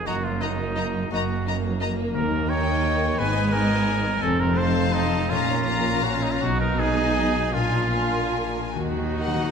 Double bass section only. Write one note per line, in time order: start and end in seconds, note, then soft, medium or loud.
0.08 1.00 F#1 medium
1.12 2.03 F#1 medium
2.15 3.07 D#2 medium
3.19 4.10 G#1 medium
4.23 5.18 F1 medium
5.30 6.28 A#1 medium
6.41 7.40 B1 medium
7.54 8.61 A#1 medium
8.76 9.51 D#2 medium